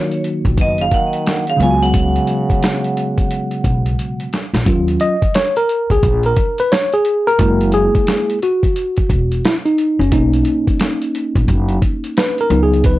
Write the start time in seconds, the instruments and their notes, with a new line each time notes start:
Already playing: trombone A#2, tine electric piano D#3 F#3 A#3 D#4 F#4, vibraphone C#5
0.11 closed hi-hat
0.24 closed hi-hat
0.45 upright bass A#1, kick, closed hi-hat
0.57 upright bass F#1, trombone B2, vibraphone D#5, kick, closed hi-hat
0.78 trombone C#3, vibraphone F5, closed hi-hat
0.91 trombone D#3, vibraphone F#5, kick, closed hi-hat
1.13 closed hi-hat
1.26 snare, closed hi-hat
1.47 trombone C#3, vibraphone F5, closed hi-hat
1.57 upright bass C#2, tine electric piano C#3 F#3 G#3, closed hi-hat
1.61 trombone C#3, tine electric piano B3 F4, vibraphone G#5
1.71 tine electric piano F#4
1.82 trombone C#3, vibraphone F#5, closed hi-hat
1.94 kick, closed hi-hat
2.16 closed hi-hat
2.27 closed hi-hat
2.50 kick, closed hi-hat
2.63 snare, closed hi-hat
2.84 closed hi-hat
2.97 closed hi-hat
3.18 kick, closed hi-hat
3.31 closed hi-hat
3.51 closed hi-hat
3.64 upright bass B1, kick, closed hi-hat
3.86 closed hi-hat
3.99 closed hi-hat
4.20 closed hi-hat
4.33 snare, closed hi-hat
4.54 upright bass A#1, snare, closed hi-hat
4.66 upright bass D#2, tine electric piano F#3 C#4 F4, kick, closed hi-hat
4.88 closed hi-hat
5.00 tine electric piano D#5, closed hi-hat
5.22 kick, closed hi-hat
5.34 tine electric piano C#5, snare, closed hi-hat
5.56 tine electric piano A#4, closed hi-hat
5.69 closed hi-hat
5.90 upright bass C#2, tine electric piano G#4, kick, closed hi-hat
6.03 upright bass A#1, kick, closed hi-hat
6.23 tine electric piano A#4, closed hi-hat
6.36 kick, closed hi-hat
6.58 tine electric piano B4, closed hi-hat
6.72 tine electric piano C#5, snare, closed hi-hat
6.93 tine electric piano G#4, closed hi-hat
7.05 closed hi-hat
7.27 tine electric piano A#4, closed hi-hat
7.39 upright bass F#1, tine electric piano G#3 A#3 E4, kick, closed hi-hat
7.61 closed hi-hat
7.72 tine electric piano G#4, closed hi-hat
7.95 kick, closed hi-hat
8.07 snare, closed hi-hat
8.30 closed hi-hat
8.42 tine electric piano F#4, closed hi-hat
8.63 kick, closed hi-hat
8.76 closed hi-hat
8.97 kick, closed hi-hat
9.10 upright bass E1, kick, closed hi-hat
9.32 closed hi-hat
9.45 tine electric piano E4, snare, closed hi-hat
9.66 tine electric piano D#4, closed hi-hat
9.78 closed hi-hat
9.99 upright bass F#1, tine electric piano C#4, closed hi-hat
10.12 upright bass B1, tine electric piano A#3 C#4 D#4, kick, closed hi-hat
10.34 closed hi-hat
10.45 closed hi-hat
10.67 kick, closed hi-hat
10.80 snare, closed hi-hat
11.02 closed hi-hat
11.15 closed hi-hat
11.35 upright bass A#1, kick, closed hi-hat
11.48 upright bass F#1, kick, closed hi-hat
11.69 closed hi-hat
11.82 kick, closed hi-hat
12.04 closed hi-hat
12.17 tine electric piano B4, snare, closed hi-hat
12.38 tine electric piano A#4, closed hi-hat
12.50 upright bass C#2, tine electric piano F#3 B3 D#4, closed hi-hat
12.63 tine electric piano G#4
12.73 closed hi-hat
12.84 tine electric piano B4, kick, closed hi-hat